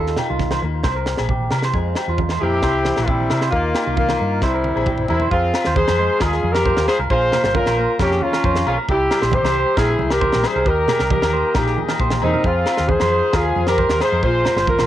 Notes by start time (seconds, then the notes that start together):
Already playing: D#2 D#3 D#4 F4 A4
0.07 snare
0.17 G4, snare, muted conga, low conga, low agogo
0.30 C2 F4
0.39 kick, snare, high conga
0.51 C5, snare, low agogo
0.62 D#2 A#3 F4, muted clean electric guitar stroke, muted conga
0.84 C2 C3 C4 E4 G4 C5, kick, snare, low agogo
0.96 A#4
1.06 snare
1.17 A#1 G#4, snare, low agogo
1.29 G4, kick, high conga, low conga
1.51 C3 E3 G4 A#4, snare, low agogo
1.62 C5, snare
1.73 F2 G#3 C4 F4 G#4, kick, muted conga
1.95 G4, snare, muted conga, low agogo
2.08 E2 F4
2.18 G#2, kick, high conga
2.29 C5, snare, low agogo
2.41 F2 A#2 C4 E4 G4 A#4, muted conga
2.62 C2 C3 C4 E4 C5, kick, snare, low agogo
2.85 snare, high conga
2.96 A#1 G#4, snare, low agogo
3.07 G3 C4 E4 G4, kick, high conga
3.30 C3 E3 A#4, muted steel-string acoustic guitar stroke, snare, low agogo
3.41 C5, snare
3.51 D#2 D#3 A#3 D#4 F4, muted clean electric guitar stroke, kick
3.75 G4, snare, muted conga, low agogo
3.87 C2 F4
3.97 A#3 F4, kick, high conga
4.09 C5, snare, low agogo
4.20 G2 D#4 A#4, muted conga
4.41 C2 C3 G3 C4 E4 C5, kick, snare, low agogo
4.54 A#4
4.64 high tom
4.76 A#1 G#4, low agogo
4.86 G4, kick, mid tom, high conga
4.98 mid tom
5.09 E2 G3 C4 E4 A#4 C5, floor tom, low agogo
5.20 C5, floor tom
5.31 F2 C4 F4 G#4 F5 C6, kick
5.54 muted steel-string acoustic guitar stroke, muted clean electric guitar stroke, snare, muted conga, low agogo
5.65 D#2 C5, snare
5.76 C4 G#4 C5, kick, high conga
5.88 F2 C5, snare, low agogo
5.99 G#3 C5
6.20 D#2 F2 F4 G#4 A#4, kick, snare, low agogo
6.32 G#4, snare
6.43 F2, high conga
6.52 G4 A#4, snare, low agogo
6.65 F4 C5, kick, muted conga, high conga
6.77 D#2, snare
6.88 G#3 G#4 C5, snare, low agogo
6.99 C2 A#4
7.10 A#1 A#2 F4 G#4 C5 F5 A#5, kick, muted conga
7.32 A#3 A#4, snare, muted conga, low conga, low agogo
7.44 G1 C5, snare
7.55 C#4 F4 A#4, kick, high conga
7.66 A#1 C5, snare, low agogo
7.77 A#3 C5
7.99 F2 C#4 G4 A#4, kick, snare, muted conga, low conga, low agogo
8.11 G#4, snare
8.21 C#4 F4, high conga
8.33 A#4, snare, low agogo
8.44 F2 C#4 C5, kick, muted conga, high conga
8.56 snare
8.66 B1 A#3 C#4 F4 G#4, low agogo
8.78 A#4
8.89 C2 C3 E4 G4 E5 G5 C6, kick
9.10 G3 A#4, snare, muted conga, low agogo
9.22 A#1 C5, snare
9.32 C4 G4 C5, kick, high conga
9.43 C2 C5, snare, low agogo
9.55 C5
9.77 A#1 G2 E4 G#4 A#4, kick, snare, low agogo
9.89 G#4
9.99 C2 E4, high conga
10.11 G4 A#4, muted clean electric guitar stroke, snare, low agogo
10.21 E4 C5, kick, muted conga, high conga
10.33 A#1, snare
10.43 G3 G#4 C5, snare, low agogo
10.56 C2 A#4
10.65 D#2 D#3 G4 A#4 D#5 A#5, kick, muted conga
10.88 A#3 G#4, snare, muted conga, low conga, low agogo
10.99 C2 A#4, snare
11.10 G4 A#4, kick, high conga
11.22 D#2 A#4, snare, low agogo
11.33 A#3 C5
11.54 A#1 A#2 D#4 G4 A#4, kick, snare, muted conga, low conga, low agogo
11.66 G#4, snare
11.78 G4, high conga
11.88 A#4, snare, low agogo
11.99 A#1 G4 C5, kick, high conga
12.10 snare, high conga
12.22 E2 A#3 C4 D#4 G#4, low conga, low agogo
12.34 A#4, low conga
12.44 F2 C4 F4 G#4 F5 C6, kick, muted conga
12.66 F3 A#4, snare, muted conga, low agogo
12.77 D#2, snare
12.88 G#3 G#4 C5, kick, high conga
13.00 F2 C5, snare, low agogo
13.12 C5
13.33 D#2 C3 F4 G#4 A#4, kick, snare, low agogo
13.46 G#4
13.56 F2 C4, high conga
13.67 G4 A#4, snare, low agogo
13.78 G2 C5, kick, muted conga, high conga
13.89 D#2, snare
14.01 G#2 G#4 C5, snare, low agogo
14.12 F2 A#4
14.23 A#1 A#2 F4 G#4 C5 A#5, kick, muted conga
14.45 F3 A#4, snare, muted conga, low conga, low agogo
14.56 G1 C5, snare
14.67 A#3 F4 A#4, kick, high conga
14.79 A#1 C5, snare, low agogo